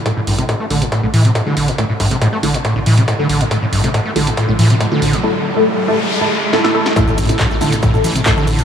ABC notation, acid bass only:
X:1
M:4/4
L:1/16
Q:1/4=139
K:Am
V:1 name="Acid bass" clef=bass
A,, A,, G,, C, A,, A, D, A,, A,, A,, E, C, A,, D, D, A,, | A,, A,, G,, C, A,, A, D, A,, A,, A,, E, C, A,, D, D, A,, | A,, A,, G,, C, A,, A, D, A,, A,, A,, E, C, A,, D, D, A,, | z16 |
A,, A,, G,, C, A,, A, D, A,, A,, A,, E, C, A,, D, D, A,, |]